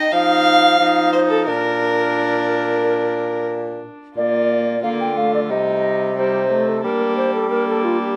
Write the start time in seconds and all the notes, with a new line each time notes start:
Already playing: D#4 D#5
0.12 F3 D#4 F5
0.80 F3 D#4
1.13 C5
1.29 A4
1.46 A#2 D4 A#4
4.16 A#2 A#3 F4 D5
4.83 D3 A#3 F4 F5
5.00 G5
5.17 A3 F5
5.34 D5
5.49 C3 G3 D#4 D#5
6.16 G3 D#4 C5
6.50 A3
6.69 A4
6.83 G3 A#3 D4 A#4
7.17 C5
7.34 A4
7.50 A#3 D4 A#4
7.68 A4
7.84 F4
8.01 G4